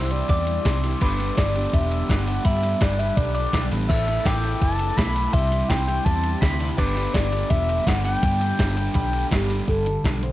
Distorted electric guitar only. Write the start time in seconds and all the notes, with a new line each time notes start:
Already playing: G3 C4 E4 G4
0.11 C4 E4 G4
0.65 C3 G3 C4 E4 G4
0.84 C4 E4 G4
1.01 G3 B3 D4 G4
1.18 B3 D4 G4
1.36 G3 B3 D4 G4
1.55 B3 D4 G4
2.09 G3 B3 D4 G4
2.27 B3 D4 G4
2.44 G3 B3 D4 G4
2.63 B3 D4 G4
2.81 G3 B3 D4 G4
2.99 B3 D4 G4
3.53 G3 B3 D4 G4
3.71 B3 D4 G4
3.90 A3 B3 E4 A4
4.08 B3 E4 A4
4.26 A3 B3 E4 A4
4.44 B3 E4 A4
4.97 A3 B3 E4 A4
5.16 B3 E4 A4
5.34 C3 G3 C4 E4 G4
5.52 C4 E4 G4
5.70 G3 C4 E4 G4
5.87 C4 E4 G4
6.42 C3 G3 C4 E4 G4
6.59 C4 E4 G4
6.77 G3 B3 D4 G4
6.96 B3 D4 G4
7.14 G3 B3 D4 G4
7.32 B3 D4 G4
7.86 G3 B3 D4 G4
8.04 B3 D4 G4
8.22 G3 B3 D4 G4
8.41 B3 D4 G4
8.59 G3 B3 D4 G4
8.76 B3 D4 G4
9.31 G3 B3 D4 G4
9.50 B3 D4 G4
9.69 G2 D3 G3
9.87 G2 D3
10.05 G2 D3 G3
10.23 G2 D3